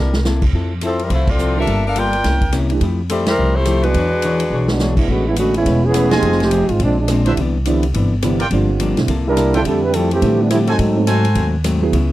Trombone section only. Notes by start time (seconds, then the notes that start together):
4.70 F#3 G#3 B3 D4
4.98 G#3 B3 D4 E4
5.09 D3 G#3 B3 F#4
5.28 G#3 B3 C#4 E4
5.38 D3 G#3 B3 F#4
5.56 G#3 B3 C#4 E4
5.85 E3 B3 C#4 G#4
6.15 F3 C4 D#4 G#4
6.42 F3 C4 D#4 G4
6.70 G#3 C4 D#4 F4
6.82 F3 G#3 C4 D4
6.99 F3 G#3 C4 D4
9.28 G3 D4 E4 A#4
9.57 G3 D4 E4 A4
9.67 G3 C4 E4 A4
9.83 G3 C4 E4 B4
9.94 G3 C4 E4 A4
10.12 E3 A3 C4 G4
10.40 E3 G3 B3 D4
10.50 G3 A3 C4 E4
10.66 F#3 C4 D#4 A4